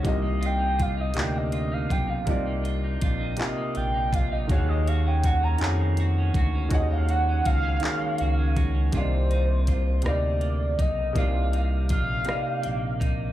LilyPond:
<<
  \new Staff \with { instrumentName = "Soft synth lead" } { \time 6/8 \key ees \lydian \tempo 4. = 54 ees''8 g''8 f''16 ees''16 g''16 ees''16 ees''16 f''16 g''16 f''16~ | f''16 r4 r16 ees''8 g''8 f''16 ees''16 | ges''16 ees''16 f''16 g''16 ges''16 bes''8 r4 r16 | ees''16 f''16 ges''16 ges''16 f''4. r8 |
c''4. d''4 ees''8 | f''4 f''4. r8 | }
  \new Staff \with { instrumentName = "Clean electric guitar" } { \time 6/8 \key ees \lydian c16 bes16 f'16 ees'16 f'16 ees'16 c16 bes16 f'16 ees'16 f'16 ees'16 | c16 bes16 f'16 ees'16 f'16 ees'16 c16 bes16 f'16 ees'16 f'16 ees'16 | ees16 aes16 ges'16 des'16 ges'16 des'16 ees16 aes16 ges'16 des'16 ges'16 des'16 | ees16 aes16 ges'16 des'16 ges'16 des'16 ees16 aes16 ges'16 des'16 ges'16 des'16 |
<c f'>8 ees'8 f'8 ees'8 bes8 ees'8 | <c f'>8 ees'8 f'8 ees'8 bes8 ees'8 | }
  \new Staff \with { instrumentName = "Grand piano" } { \time 6/8 \key ees \lydian <c bes ees' f' ees''>4 r8 <c bes d' ees' f' f''>4 r8 | <c bes ees' f' d''>4 r8 <c bes ees' f' f''>4 r8 | <ees bes ges' aes' des'' f''>4 r8 <ees bes f' ges' aes' des'' f''>4 r8 | <ees bes ges' aes' des'' ges''>4 r8 <ees bes ges' aes' des'' f''>4 r8 |
<c bes d' ees' d'' f''>4 r8 <c bes ees' d'' f''>4 r8 | <c bes ees' d'' f''>4 r8 <c bes ees' d'' f''>4 r8 | }
  \new Staff \with { instrumentName = "Analog synth bass" } { \clef bass \time 6/8 \key ees \lydian c,4. d,4 b,,8 | c,4 bes,,8 bes,,8 bes,,4 | ees,4. f,4 d,8 | ees,4 des,8 des,8 des,4 |
c,4. d,4 b,,8 | c,4 bes,,8 bes,,8 bes,,4 | }
  \new DrumStaff \with { instrumentName = "Drums" } \drummode { \time 6/8 <hh bd>8 hh8 <hh bd>8 <hc hh>8 hh8 <hh bd>8 | <hh bd>8 hh8 <hh bd>8 <hc hh>8 hh8 <hh bd>8 | <hh bd>8 hh8 <hh bd>8 <hc hh>8 hh8 <hh bd>8 | <hh bd>8 hh8 <hh bd>8 <hc hh>8 hh8 <hh bd>8 |
<hh bd>8 hh8 <hh bd>8 <hh ss>8 hh8 <hh bd>8 | <hh bd>8 hh8 <hh bd>8 <hh ss>8 hh8 <hh bd>8 | }
>>